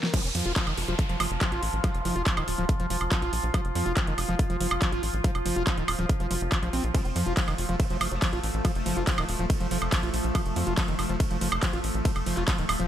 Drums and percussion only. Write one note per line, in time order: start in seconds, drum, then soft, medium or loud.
0.03 snare medium
0.14 kick loud
0.14 closed hi-hat medium
0.14 crash loud
0.24 closed hi-hat soft
0.35 open hi-hat loud
0.46 closed hi-hat soft
0.56 kick loud
0.56 clap loud
0.56 closed hi-hat medium
0.67 closed hi-hat soft
0.67 high woodblock soft
0.78 open hi-hat loud
0.88 closed hi-hat soft
0.99 kick loud
0.99 closed hi-hat loud
1.09 closed hi-hat soft
1.20 open hi-hat loud
1.20 high woodblock medium
1.31 closed hi-hat soft
1.41 kick loud
1.41 clap loud
1.41 closed hi-hat loud
1.52 closed hi-hat soft
1.63 open hi-hat loud
1.73 closed hi-hat soft
1.84 kick loud
1.84 closed hi-hat medium
1.84 high woodblock soft
1.95 closed hi-hat soft
2.05 open hi-hat loud
2.16 closed hi-hat soft
2.26 kick loud
2.26 clap loud
2.26 closed hi-hat medium
2.37 closed hi-hat soft
2.37 high woodblock medium
2.48 open hi-hat loud
2.69 kick loud
2.69 closed hi-hat loud
2.80 closed hi-hat soft
2.90 open hi-hat loud
3.01 closed hi-hat soft
3.01 high woodblock soft
3.12 kick loud
3.12 clap loud
3.12 closed hi-hat medium
3.22 closed hi-hat soft
3.33 open hi-hat loud
3.44 closed hi-hat soft
3.54 kick loud
3.54 closed hi-hat medium
3.54 high woodblock medium
3.65 closed hi-hat soft
3.75 open hi-hat loud
3.86 closed hi-hat soft
3.97 kick loud
3.97 clap loud
3.97 closed hi-hat medium
4.07 closed hi-hat soft
4.18 open hi-hat loud
4.18 high woodblock soft
4.29 closed hi-hat soft
4.39 kick loud
4.39 closed hi-hat medium
4.50 closed hi-hat soft
4.61 open hi-hat loud
4.71 closed hi-hat soft
4.71 high woodblock medium
4.82 kick loud
4.82 clap loud
4.82 closed hi-hat medium
4.92 closed hi-hat soft
5.03 open hi-hat loud
5.14 closed hi-hat soft
5.24 kick loud
5.24 closed hi-hat medium
5.35 closed hi-hat soft
5.35 high woodblock soft
5.46 open hi-hat loud
5.56 closed hi-hat soft
5.67 kick loud
5.67 clap loud
5.67 closed hi-hat medium
5.78 closed hi-hat soft
5.88 open hi-hat loud
5.88 high woodblock medium
5.99 closed hi-hat soft
6.09 kick loud
6.09 closed hi-hat medium
6.20 closed hi-hat soft
6.31 open hi-hat loud
6.41 closed hi-hat soft
6.52 kick loud
6.52 clap loud
6.52 closed hi-hat medium
6.52 high woodblock soft
6.63 closed hi-hat soft
6.73 open hi-hat loud
6.84 closed hi-hat soft
6.95 kick loud
6.95 closed hi-hat medium
6.95 ride medium
7.05 closed hi-hat soft
7.16 open hi-hat loud
7.26 closed hi-hat soft
7.37 kick loud
7.37 clap loud
7.37 closed hi-hat medium
7.37 ride medium
7.48 closed hi-hat soft
7.48 high woodblock soft
7.58 open hi-hat loud
7.69 closed hi-hat soft
7.80 kick loud
7.80 closed hi-hat medium
7.80 ride medium
7.90 closed hi-hat soft
8.01 open hi-hat loud
8.01 high woodblock medium
8.12 closed hi-hat soft
8.22 kick loud
8.22 clap loud
8.22 closed hi-hat medium
8.22 ride medium
8.33 closed hi-hat soft
8.43 open hi-hat medium
8.54 closed hi-hat soft
8.65 kick loud
8.65 closed hi-hat medium
8.65 ride medium
8.65 high woodblock soft
8.75 closed hi-hat soft
8.86 open hi-hat loud
9.07 kick loud
9.07 clap loud
9.07 closed hi-hat medium
9.07 ride medium
9.18 closed hi-hat soft
9.18 high woodblock medium
9.29 open hi-hat medium
9.39 closed hi-hat soft
9.50 kick loud
9.50 closed hi-hat loud
9.50 ride medium
9.61 closed hi-hat soft
9.71 open hi-hat loud
9.82 closed hi-hat soft
9.82 high woodblock soft
9.92 kick loud
9.92 clap loud
9.92 closed hi-hat medium
9.92 ride medium
10.03 closed hi-hat soft
10.14 open hi-hat medium
10.24 closed hi-hat soft
10.35 kick loud
10.35 closed hi-hat medium
10.35 ride medium
10.35 high woodblock medium
10.46 closed hi-hat soft
10.56 open hi-hat loud
10.67 closed hi-hat soft
10.78 kick loud
10.78 clap loud
10.78 closed hi-hat loud
10.78 ride medium
10.88 closed hi-hat soft
10.99 open hi-hat medium
10.99 high woodblock soft
11.09 closed hi-hat soft
11.20 kick loud
11.20 closed hi-hat loud
11.20 ride medium
11.31 closed hi-hat soft
11.41 open hi-hat loud
11.52 high woodblock medium
11.63 kick loud
11.63 clap loud
11.63 closed hi-hat loud
11.63 ride medium
11.73 closed hi-hat soft
11.84 open hi-hat medium
11.95 closed hi-hat soft
12.05 kick loud
12.05 closed hi-hat loud
12.05 ride medium
12.16 closed hi-hat soft
12.16 high woodblock soft
12.26 open hi-hat loud
12.37 clap soft
12.37 closed hi-hat soft
12.48 kick loud
12.48 clap loud
12.48 closed hi-hat loud
12.48 ride medium
12.58 closed hi-hat soft
12.69 open hi-hat loud
12.69 high woodblock medium
12.80 closed hi-hat soft